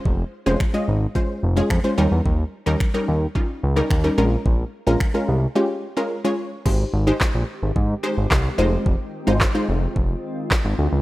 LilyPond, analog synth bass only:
\new Staff \with { instrumentName = "Analog synth bass" } { \clef bass \time 4/4 \key aes \major \tempo 4 = 109 f,,8 r16 f,,16 r8 aes,,8 r8 f,,8 f,16 r16 ees,16 e,16 | ees,8 r16 ees,16 r8 ees,8 r8 des,8 ees,8 bes,,8 | bes,,8 r16 bes,,16 r8 c,8 r2 | aes,,8 aes,,8 r16 bes,,16 r16 aes,,16 aes,8 r16 aes,,16 c,8 f,,8 |
f,,16 r8 aes,,8 r16 f,,8 f,,8 r8. aes,,16 d,16 des,16 | }